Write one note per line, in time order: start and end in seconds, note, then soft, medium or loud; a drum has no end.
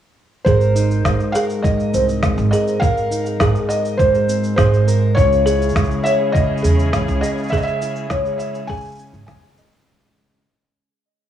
0.45 1.01 G#1 medium
0.45 1.62 G#2 medium
0.45 0.75 G#4 medium
0.45 1.33 A#4 medium
0.45 1.36 C5 medium
0.45 kick loud
0.45 shaker soft
0.61 shaker soft
0.75 3.10 D#4 medium
0.75 shaker medium
0.91 shaker soft
1.05 1.17 G#1 medium
1.05 2.23 G#3 medium
1.05 kick loud
1.05 snare loud
1.05 shaker soft
1.20 shaker soft
1.32 1.63 G#4 medium
1.32 2.51 A#4 medium
1.32 1.39 F5 medium
1.32 shaker medium
1.50 shaker soft
1.62 2.81 G#2 medium
1.62 2.18 D#5 medium
1.62 kick loud
1.62 shaker soft
1.80 shaker soft
1.93 2.33 C2 medium
1.93 4.27 C4 medium
1.93 2.22 C5 medium
1.93 shaker medium
2.09 shaker soft
2.23 3.40 G#3 medium
2.23 kick loud
2.23 snare loud
2.23 shaker soft
2.38 2.50 G#1 medium
2.38 shaker soft
2.51 2.81 G#4 medium
2.51 2.81 A#4 medium
2.51 2.79 D#5 medium
2.51 shaker medium
2.67 shaker soft
2.80 3.98 G#2 medium
2.80 3.69 A#4 medium
2.80 3.35 F5 loud
2.80 kick loud
2.80 shaker soft
2.97 shaker soft
3.11 5.23 D#4 medium
3.11 shaker medium
3.26 shaker soft
3.40 3.53 G#1 medium
3.40 4.58 G#3 medium
3.40 3.69 G#4 medium
3.40 kick loud
3.40 snare loud
3.40 shaker soft
3.55 shaker soft
3.69 4.86 A#4 medium
3.69 3.97 D#5 medium
3.69 shaker medium
3.85 shaker soft
3.98 5.23 G#2 medium
3.98 4.55 C5 medium
3.98 4.27 C5 medium
3.98 kick loud
3.98 shaker soft
4.15 shaker soft
4.28 5.23 C4 medium
4.28 shaker medium
4.44 shaker soft
4.56 5.13 G#1 medium
4.56 5.75 G#3 medium
4.56 4.86 G#4 medium
4.56 4.98 C5 medium
4.56 kick loud
4.56 snare loud
4.56 shaker soft
4.74 shaker soft
4.88 5.17 A#4 medium
4.88 shaker medium
5.15 5.72 C#2 medium
5.15 9.84 C#3 medium
5.15 6.34 C#3 medium
5.15 9.84 C#4 medium
5.15 9.84 E4 medium
5.15 9.84 G#4 medium
5.15 6.05 G#4 medium
5.15 6.00 C#5 loud
5.15 kick loud
5.15 shaker soft
5.33 shaker soft
5.46 7.81 E4 medium
5.46 5.74 G#4 medium
5.46 shaker medium
5.62 shaker soft
5.69 shaker soft
5.76 5.88 C#2 medium
5.76 6.93 G#3 medium
5.76 kick loud
5.76 snare loud
5.76 shaker soft
5.84 shaker soft
5.91 shaker soft
6.04 7.22 G#4 medium
6.04 6.33 C#5 medium
6.04 6.10 E5 loud
6.04 shaker medium
6.32 7.51 C#3 medium
6.32 6.88 D#5 medium
6.32 kick loud
6.32 shaker soft
6.58 shaker soft
6.63 7.04 E2 medium
6.63 8.99 C#4 medium
6.63 6.91 G#4 medium
6.63 shaker medium
6.79 shaker soft
6.93 8.10 G#3 medium
6.93 kick loud
6.93 snare medium
6.93 shaker soft
7.08 7.20 C#2 medium
7.08 shaker soft
7.21 7.52 G#4 medium
7.21 7.28 D#5 medium
7.21 shaker medium
7.38 shaker soft
7.43 shaker soft
7.48 8.69 C#3 medium
7.48 7.57 E5 loud
7.48 kick loud
7.48 shaker soft
7.53 8.40 G#4 medium
7.53 7.80 G#4 loud
7.53 shaker soft
7.57 7.65 D#5 loud
7.57 shaker soft
7.62 8.06 E5 loud
7.62 shaker soft
7.67 shaker soft
7.82 10.44 E4 medium
7.82 shaker medium
7.96 shaker soft
8.10 8.23 C#2 medium
8.10 9.29 G#3 medium
8.10 8.39 C#5 medium
8.10 kick loud
8.10 snare loud
8.10 shaker soft
8.25 shaker soft
8.38 9.58 G#4 medium
8.38 8.69 E5 medium
8.38 shaker medium
8.55 shaker soft
8.67 10.44 C#3 medium
8.67 8.98 G#4 medium
8.67 9.25 G#5 loud
8.67 kick loud
8.67 shaker soft
8.73 shaker soft
8.77 shaker soft
8.81 shaker soft
8.85 shaker soft
8.88 shaker soft
8.92 shaker soft
8.95 shaker soft
8.99 10.44 C#4 medium
8.99 shaker medium
9.13 9.26 G#1 medium
9.13 shaker soft
9.26 9.41 E2 medium
9.26 10.44 G#3 medium
9.26 9.69 G#5 medium
9.26 kick loud
9.26 snare medium
9.26 shaker soft
9.43 shaker soft
9.57 10.43 G#4 medium
9.57 9.86 D#5 medium
9.57 shaker medium
9.72 shaker soft